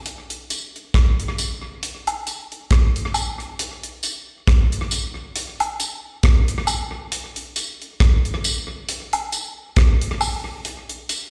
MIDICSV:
0, 0, Header, 1, 2, 480
1, 0, Start_track
1, 0, Tempo, 883652
1, 28, Time_signature, 4, 2, 24, 8
1, 6138, End_track
2, 0, Start_track
2, 0, Title_t, "Drums"
2, 31, Note_on_c, 9, 42, 81
2, 85, Note_off_c, 9, 42, 0
2, 164, Note_on_c, 9, 42, 49
2, 218, Note_off_c, 9, 42, 0
2, 273, Note_on_c, 9, 42, 71
2, 273, Note_on_c, 9, 54, 53
2, 327, Note_off_c, 9, 54, 0
2, 328, Note_off_c, 9, 42, 0
2, 412, Note_on_c, 9, 42, 35
2, 466, Note_off_c, 9, 42, 0
2, 512, Note_on_c, 9, 36, 96
2, 515, Note_on_c, 9, 42, 80
2, 517, Note_on_c, 9, 37, 103
2, 566, Note_off_c, 9, 36, 0
2, 569, Note_off_c, 9, 42, 0
2, 572, Note_off_c, 9, 37, 0
2, 650, Note_on_c, 9, 42, 53
2, 704, Note_off_c, 9, 42, 0
2, 751, Note_on_c, 9, 54, 69
2, 755, Note_on_c, 9, 42, 81
2, 806, Note_off_c, 9, 54, 0
2, 809, Note_off_c, 9, 42, 0
2, 993, Note_on_c, 9, 42, 89
2, 1048, Note_off_c, 9, 42, 0
2, 1126, Note_on_c, 9, 42, 58
2, 1127, Note_on_c, 9, 76, 68
2, 1180, Note_off_c, 9, 42, 0
2, 1181, Note_off_c, 9, 76, 0
2, 1232, Note_on_c, 9, 42, 59
2, 1232, Note_on_c, 9, 54, 49
2, 1286, Note_off_c, 9, 42, 0
2, 1286, Note_off_c, 9, 54, 0
2, 1368, Note_on_c, 9, 42, 35
2, 1422, Note_off_c, 9, 42, 0
2, 1470, Note_on_c, 9, 42, 84
2, 1471, Note_on_c, 9, 36, 108
2, 1478, Note_on_c, 9, 37, 103
2, 1524, Note_off_c, 9, 42, 0
2, 1525, Note_off_c, 9, 36, 0
2, 1532, Note_off_c, 9, 37, 0
2, 1608, Note_on_c, 9, 42, 58
2, 1662, Note_off_c, 9, 42, 0
2, 1707, Note_on_c, 9, 54, 62
2, 1707, Note_on_c, 9, 76, 67
2, 1714, Note_on_c, 9, 42, 57
2, 1761, Note_off_c, 9, 54, 0
2, 1761, Note_off_c, 9, 76, 0
2, 1768, Note_off_c, 9, 42, 0
2, 1847, Note_on_c, 9, 42, 31
2, 1902, Note_off_c, 9, 42, 0
2, 1952, Note_on_c, 9, 42, 88
2, 2006, Note_off_c, 9, 42, 0
2, 2083, Note_on_c, 9, 42, 53
2, 2138, Note_off_c, 9, 42, 0
2, 2188, Note_on_c, 9, 54, 53
2, 2191, Note_on_c, 9, 42, 73
2, 2242, Note_off_c, 9, 54, 0
2, 2245, Note_off_c, 9, 42, 0
2, 2431, Note_on_c, 9, 36, 111
2, 2431, Note_on_c, 9, 42, 82
2, 2433, Note_on_c, 9, 37, 100
2, 2485, Note_off_c, 9, 36, 0
2, 2485, Note_off_c, 9, 42, 0
2, 2488, Note_off_c, 9, 37, 0
2, 2565, Note_on_c, 9, 42, 56
2, 2620, Note_off_c, 9, 42, 0
2, 2667, Note_on_c, 9, 54, 76
2, 2672, Note_on_c, 9, 42, 81
2, 2722, Note_off_c, 9, 54, 0
2, 2727, Note_off_c, 9, 42, 0
2, 2909, Note_on_c, 9, 42, 102
2, 2964, Note_off_c, 9, 42, 0
2, 3043, Note_on_c, 9, 42, 57
2, 3044, Note_on_c, 9, 76, 72
2, 3097, Note_off_c, 9, 42, 0
2, 3098, Note_off_c, 9, 76, 0
2, 3149, Note_on_c, 9, 42, 62
2, 3149, Note_on_c, 9, 54, 55
2, 3203, Note_off_c, 9, 42, 0
2, 3204, Note_off_c, 9, 54, 0
2, 3385, Note_on_c, 9, 42, 89
2, 3387, Note_on_c, 9, 36, 121
2, 3393, Note_on_c, 9, 37, 116
2, 3440, Note_off_c, 9, 42, 0
2, 3441, Note_off_c, 9, 36, 0
2, 3448, Note_off_c, 9, 37, 0
2, 3521, Note_on_c, 9, 42, 62
2, 3575, Note_off_c, 9, 42, 0
2, 3623, Note_on_c, 9, 54, 72
2, 3623, Note_on_c, 9, 76, 67
2, 3629, Note_on_c, 9, 42, 60
2, 3678, Note_off_c, 9, 54, 0
2, 3678, Note_off_c, 9, 76, 0
2, 3683, Note_off_c, 9, 42, 0
2, 3867, Note_on_c, 9, 42, 91
2, 3921, Note_off_c, 9, 42, 0
2, 3998, Note_on_c, 9, 42, 53
2, 4053, Note_off_c, 9, 42, 0
2, 4106, Note_on_c, 9, 54, 54
2, 4107, Note_on_c, 9, 42, 75
2, 4160, Note_off_c, 9, 54, 0
2, 4161, Note_off_c, 9, 42, 0
2, 4246, Note_on_c, 9, 42, 35
2, 4300, Note_off_c, 9, 42, 0
2, 4347, Note_on_c, 9, 36, 113
2, 4348, Note_on_c, 9, 42, 91
2, 4351, Note_on_c, 9, 37, 103
2, 4402, Note_off_c, 9, 36, 0
2, 4402, Note_off_c, 9, 42, 0
2, 4405, Note_off_c, 9, 37, 0
2, 4482, Note_on_c, 9, 42, 56
2, 4536, Note_off_c, 9, 42, 0
2, 4586, Note_on_c, 9, 54, 74
2, 4589, Note_on_c, 9, 42, 90
2, 4640, Note_off_c, 9, 54, 0
2, 4644, Note_off_c, 9, 42, 0
2, 4827, Note_on_c, 9, 42, 104
2, 4881, Note_off_c, 9, 42, 0
2, 4959, Note_on_c, 9, 42, 60
2, 4961, Note_on_c, 9, 76, 73
2, 5013, Note_off_c, 9, 42, 0
2, 5015, Note_off_c, 9, 76, 0
2, 5065, Note_on_c, 9, 42, 61
2, 5065, Note_on_c, 9, 54, 57
2, 5119, Note_off_c, 9, 42, 0
2, 5120, Note_off_c, 9, 54, 0
2, 5304, Note_on_c, 9, 42, 83
2, 5306, Note_on_c, 9, 36, 118
2, 5312, Note_on_c, 9, 37, 116
2, 5358, Note_off_c, 9, 42, 0
2, 5360, Note_off_c, 9, 36, 0
2, 5366, Note_off_c, 9, 37, 0
2, 5440, Note_on_c, 9, 42, 61
2, 5494, Note_off_c, 9, 42, 0
2, 5544, Note_on_c, 9, 54, 65
2, 5544, Note_on_c, 9, 76, 68
2, 5548, Note_on_c, 9, 46, 43
2, 5598, Note_off_c, 9, 54, 0
2, 5598, Note_off_c, 9, 76, 0
2, 5603, Note_off_c, 9, 46, 0
2, 5785, Note_on_c, 9, 42, 87
2, 5839, Note_off_c, 9, 42, 0
2, 5918, Note_on_c, 9, 42, 54
2, 5972, Note_off_c, 9, 42, 0
2, 6025, Note_on_c, 9, 54, 52
2, 6026, Note_on_c, 9, 42, 80
2, 6080, Note_off_c, 9, 42, 0
2, 6080, Note_off_c, 9, 54, 0
2, 6138, End_track
0, 0, End_of_file